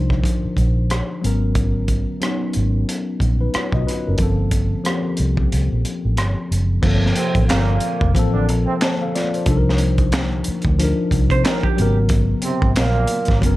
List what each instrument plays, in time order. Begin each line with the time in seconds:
Already playing: fingered electric bass C2, tine electric piano F3 D4 D#4 A#4 C5
0.10 kick, cross-stick
0.24 kick, closed hi-hat
0.45 muted fingered electric bass stroke
0.57 fingered electric bass A#1, kick, closed hi-hat
0.90 cross-stick, closed hi-hat
1.21 fingered electric bass G#1, tine electric piano F#3 B3 C#4, closed hi-hat
1.26 tine electric piano A#4
1.55 kick, closed hi-hat
1.88 kick, closed hi-hat
2.20 tine electric piano F#3 B3 C#4, cross-stick, closed hi-hat
2.25 tine electric piano D#4
2.53 fingered electric bass G#1, closed hi-hat
2.89 closed hi-hat
3.20 fingered electric bass A#1, kick, closed hi-hat
3.41 tine electric piano D#4 B4
3.54 tine electric piano F4 C#5, muted fingered electric bass stroke, cross-stick, closed hi-hat
3.72 fingered electric bass B1, tine electric piano F#4 D#5, kick
3.87 tine electric piano D#4 B4, cross-stick, closed hi-hat
4.08 fingered electric bass F#1, tine electric piano C#4 A#4
4.18 fingered electric bass G1, tine electric piano F3 A#3 C4, kick, closed hi-hat
4.22 tine electric piano A4
4.51 kick, closed hi-hat
4.84 tine electric piano F3 A#3 C4, cross-stick, closed hi-hat
4.89 tine electric piano G4
5.17 fingered electric bass C2, closed hi-hat
5.37 kick
5.52 fingered electric bass C2, closed hi-hat
5.72 fingered electric bass A#1
5.85 closed hi-hat
6.05 fingered electric bass A1
6.17 fingered electric bass G1, cross-stick, closed hi-hat
6.51 fingered electric bass F#1, closed hi-hat
6.82 fingered electric bass G1, tine electric piano F3 A#3 C4, kick, crash
6.86 tine electric piano A4
7.06 snare
7.15 trombone section C3 C4, closed hi-hat
7.35 fingered electric bass A1, kick, closed hi-hat
7.48 fingered electric bass G1, trombone section A#2 A#3, snare, clap, closed hi-hat
7.80 closed hi-hat
8.01 fingered electric bass F1, kick
8.14 fingered electric bass A1, tine electric piano F3 A#3 C4, kick, closed hi-hat
8.19 tine electric piano A4
8.33 trombone section D3 D4
8.49 fingered electric bass A#1, closed hi-hat
8.66 trombone section C3 C4
8.81 tine electric piano C5 A5, snare, clap, closed hi-hat
9.02 tine electric piano A4 F5
9.15 tine electric piano F4 D5, snare, closed hi-hat
9.34 tine electric piano C5, closed hi-hat
9.46 fingered electric bass C2, tine electric piano F3 D4 D#4, kick, closed hi-hat
9.51 tine electric piano A4
9.57 tine electric piano A#4
9.69 snare
9.78 closed hi-hat
9.98 kick, closed hi-hat
10.12 snare, clap, closed hi-hat
10.44 muted fingered electric bass stroke, closed hi-hat
10.62 fingered electric bass D2, kick, closed hi-hat
10.79 tine electric piano F3 D4 D#4, closed hi-hat
10.83 tine electric piano A#4
11.11 fingered electric bass C2, kick, closed hi-hat
11.30 fingered electric bass C3, clean electric guitar C5, kick, closed hi-hat
11.44 clean electric guitar A#4, snare, clap, closed hi-hat
11.63 clean electric guitar G4, kick
11.76 fingered electric bass G#1, tine electric piano C#3 F#3 B3, closed hi-hat
11.82 tine electric piano A#4
12.09 kick, closed hi-hat
12.42 trombone section C3 C4, closed hi-hat
12.62 fingered electric bass G#1, kick
12.76 fingered electric bass A#1, trombone section A#2 A#3, snare, clap, closed hi-hat
13.07 closed hi-hat
13.25 kick, closed hi-hat
13.29 fingered electric bass G#1, snare
13.41 fingered electric bass F#1, tine electric piano F#3 B3 C#4, kick, closed hi-hat
13.46 tine electric piano A#4